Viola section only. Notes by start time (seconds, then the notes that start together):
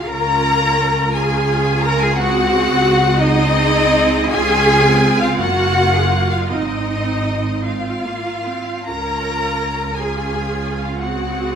0.06 C#4 F4
1.14 C#4 F4
2.20 C4 G#4
3.20 C4 G#4
4.33 C#4 F4
4.85 C4
5.40 A#3 F4
6.52 C4 D#4
7.65 C4
8.03 A#3
8.46 C4
8.85 C#4 F4
9.96 C#4 F4
11.03 C4 G#4